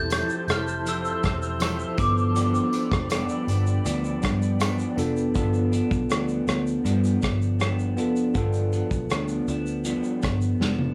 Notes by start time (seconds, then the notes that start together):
Already playing: E1 F3 C4 E4 G4 A4 A5 C6 G6
0.10 F3 C4 E4 A4, cross-stick, closed hi-hat, tambourine, shaker
0.29 shaker
0.47 F1 C4 E4 A4 F6, cross-stick, closed hi-hat, tambourine, shaker
0.68 shaker
0.85 F3 C4 E4 A4 E6, closed hi-hat, shaker
1.05 shaker
1.23 E1 C4 E4 A4, kick, cross-stick, closed hi-hat, shaker
1.42 shaker
1.60 F3 C4 E4 A4, cross-stick, closed hi-hat, tambourine, shaker
1.79 shaker
1.97 G1 F3 B3 D4 F4 A4 D5 G5 B5 D6, kick, closed hi-hat, tambourine, shaker
2.18 shaker
2.35 G2 F3 B3 D4, closed hi-hat, tambourine, shaker
2.54 shaker
2.72 F3 B3 D4, closed hi-hat, tambourine, shaker
2.92 F1, kick, cross-stick, shaker
3.10 G2 F3 B3 D4, cross-stick, closed hi-hat, tambourine, shaker
3.29 shaker
3.47 G1 F3 B3 D4, closed hi-hat, tambourine, shaker
3.67 shaker
3.84 D2 G2 F3 B3 D4, closed hi-hat, tambourine, shaker
4.04 shaker
4.22 G2 F3 B3 D4, kick, cross-stick, closed hi-hat, tambourine, shaker
4.42 shaker
4.60 G2 F3 B3 D4, cross-stick, closed hi-hat, tambourine, shaker
4.79 shaker
4.96 F1 F3 B3 D4 F4 A4, closed hi-hat, tambourine, shaker
5.17 shaker
5.34 G1 G2 F3 B3 D4 F4 A4, kick, closed hi-hat, shaker
5.54 shaker
5.72 F3 B3 D4, closed hi-hat, shaker
5.91 B1, kick, shaker
6.09 D2 G2 F3 B3 D4, cross-stick, closed hi-hat, shaker
6.28 shaker
6.47 D2 F3 B3 D4, cross-stick, closed hi-hat, shaker
6.67 shaker
6.84 G2 F3 B3 D4, closed hi-hat, shaker
7.04 shaker
7.21 G1 F3 B3 D4, kick, cross-stick, closed hi-hat, shaker
7.42 shaker
7.59 G2 F3 B3 D4, cross-stick, closed hi-hat, shaker
7.79 shaker
7.97 F1 F3 B3 D4 F4 A4, closed hi-hat, shaker
8.16 shaker
8.34 G1 G2 F3 B3 D4 F4 A4, kick, closed hi-hat, shaker
8.53 shaker
8.73 F3 B3 D4, closed hi-hat, shaker
8.91 B1, kick, shaker
9.10 D2 G2 F3 B3 D4, cross-stick, closed hi-hat, shaker
9.28 shaker
9.48 D2 F3 B3 D4, closed hi-hat, shaker
9.66 shaker
9.84 G2 F3 B3 D4, closed hi-hat, shaker
10.04 shaker
10.22 G1 F3 B3 D4, kick, cross-stick, closed hi-hat, shaker
10.41 shaker
10.60 F1 G2 F3 B3 D4, snare
10.79 high tom